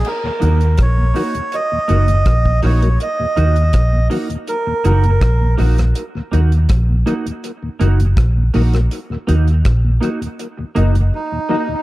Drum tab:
CC |x---------------|----------------|----------------|----------------|
HH |--xxx-oxx-xxx-ox|x-xxx-oxx-xxx-ox|x-xxx-xxx-xxx-ox|x-xxx-xxx-xx----|
SD |----r-------r---|----r-------r--r|----r-------r--r|----r-----------|
BD |----o-------oo--|----o-------o---|----o-------o---|----o-----------|